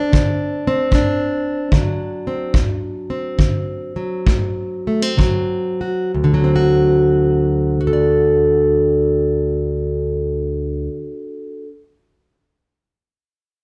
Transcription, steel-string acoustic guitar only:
0.00 0.66 C4 medium
0.00 0.93 D4 medium
0.13 0.86 D3 medium
0.67 1.73 C4 medium
0.91 1.66 A2 medium
0.91 5.80 D4 medium
1.73 2.49 D3 medium
1.73 3.95 F#3 soft
2.27 2.57 C4 soft
2.54 3.33 D2 medium
3.10 4.87 C4 soft
3.39 4.21 D3 medium
3.96 5.17 F#3 soft
4.27 5.12 A2 medium
4.87 5.02 A3 soft
5.02 6.16 C4 soft
5.17 6.08 D3 medium
5.17 6.33 F#3 soft
5.81 6.11 F#4 soft
6.14 10.88 D2 medium
6.24 10.97 D3 medium
6.34 7.80 F#3 medium
6.44 7.84 C4 medium
6.56 7.79 F#4 medium
7.81 11.64 F#4 medium
7.87 11.68 A4 medium
7.93 11.71 D5 medium

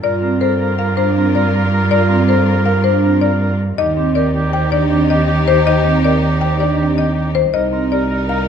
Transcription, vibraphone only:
0.03 0.28 F4 medium
0.22 0.46 C4 medium
0.41 0.65 A4 medium
0.78 1.03 A#4 medium
0.96 1.21 D4 medium
1.15 1.40 C4 medium
1.91 2.15 F4 medium
2.09 2.34 C4 medium
2.28 2.53 A4 medium
2.66 2.90 A#4 medium
2.84 3.09 D4 medium
3.03 3.28 C4 medium
3.78 4.03 D#4 medium
3.97 4.21 C4 medium
4.15 4.40 A#4 medium
4.53 4.78 C5 medium
4.72 4.97 D4 medium
4.91 5.15 C4 medium
5.66 5.90 D#4 medium
5.85 6.09 C4 medium
6.04 6.28 A#4 medium
6.42 6.66 C5 medium
6.60 6.84 D4 medium
6.79 7.03 C4 medium
7.54 7.78 D#4 medium
7.73 7.97 C4 medium
7.92 8.16 G4 medium
8.29 8.48 A#4 medium

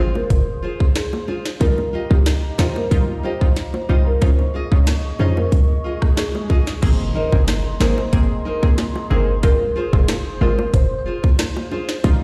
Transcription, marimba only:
0.00 0.13 C5 medium
0.15 0.29 A#4 medium
0.96 1.43 G#4 medium
1.61 1.89 A#4 loud
2.11 2.24 G4 medium
2.59 2.74 C5 medium
2.76 2.89 A#4 medium
3.24 3.39 C5 medium
3.74 3.87 C5 medium
4.07 4.20 A#4 medium
4.22 4.37 C5 loud
4.72 4.85 C#5 medium
5.20 5.35 C5 medium
5.37 5.50 A#4 medium
6.17 6.64 G#4 medium
7.16 7.30 D#5 medium
7.81 8.09 C5 medium
9.43 9.58 A#4 loud
9.93 10.22 G#4 medium
10.41 10.70 A#4 medium
10.74 11.21 C5 loud

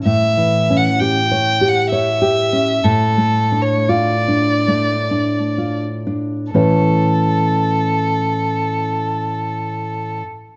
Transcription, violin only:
0.05 0.78 E5 medium
0.77 1.01 F#5 soft
0.99 1.70 G5 medium
1.68 1.89 F#5 soft
1.90 2.85 E5 medium
2.83 3.63 A4 medium
3.62 3.90 C#5 soft
3.89 5.82 D5 soft
6.52 10.19 A4 soft

